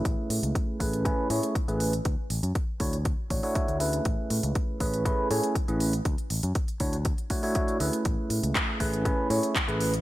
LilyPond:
<<
  \new Staff \with { instrumentName = "Tine electric piano" } { \time 4/4 \key a \major \tempo 4 = 120 <a cis' e' gis' b'>4. <a cis' e' gis' b'>8 <a cis' e' gis' b'>8 <a cis' e' gis' cis''>8 r16 <a cis' e' gis' b'>8 r16 | r4. <a d' e' fis' cis''>16 r8. <a d' e' fis' cis''>16 <a d' e' fis' cis''>16 <a d' e' fis' cis''>8 <a cis' e' gis' b'>8~ | <a cis' e' gis' b'>4. <a cis' e' gis' b'>8 <a cis' e' gis' b'>8 <a cis' e' gis' cis''>8 r16 <a cis' e' gis' b'>8 r16 | r4. <a d' e' fis' cis''>16 r8. <a d' e' fis' cis''>16 <a d' e' fis' cis''>16 <a d' e' fis' cis''>8 <a cis' e' gis' b'>8~ |
<a cis' e' gis' b'>4. <a cis' e' gis' b'>8 <a cis' e' gis' b'>8 <a cis' e' gis' cis''>8 r16 <a cis' e' gis' b'>8 r16 | }
  \new Staff \with { instrumentName = "Fingered electric bass" } { \clef bass \time 4/4 \key a \major a,,16 r16 a,16 cis,16 r8 a,,8 r8 a,16 r8 a,,8 r16 | d,16 r16 a,,16 fis,16 r8 d,8 r8 a,,16 r8 d,8 r16 | a,,16 r16 a,16 cis,16 r8 a,,8 r8 a,16 r8 a,,8 r16 | d,16 r16 a,,16 fis,16 r8 d,8 r4. d,16 r16 |
a,,16 r16 a,16 cis,16 r8 a,,8 r8 a,16 r8 a,,8 r16 | }
  \new DrumStaff \with { instrumentName = "Drums" } \drummode { \time 4/4 <hh bd>8 hho16 hh16 <hh bd>8 <hho bd>16 hh16 <hh bd>8 hho16 hh16 <hh bd>16 hh16 hho16 hh16 | <hh bd>8 hho16 hh16 <hh bd>8 <hho bd>16 hh16 <hh bd>8 <hho bd>16 hho16 <hh bd>16 hh16 hho16 hh16 | <hh bd>8 hho16 hh16 <hh bd>8 <hho bd>16 hh16 <hh bd>8 hho16 hh16 <hh bd>16 hh16 hho16 hh16 | <hh bd>16 hh16 hho16 hh16 <hh bd>16 hh16 <hho bd>16 hh16 <hh bd>16 hh16 <hho bd>16 hho16 <hh bd>16 hh16 hho16 hh16 |
<hh bd>8 hho16 hh16 <hc hh bd>8 <hho bd>16 hh16 <hh bd>8 hho16 hh16 <hc hh bd>16 hh16 hho16 hh16 | }
>>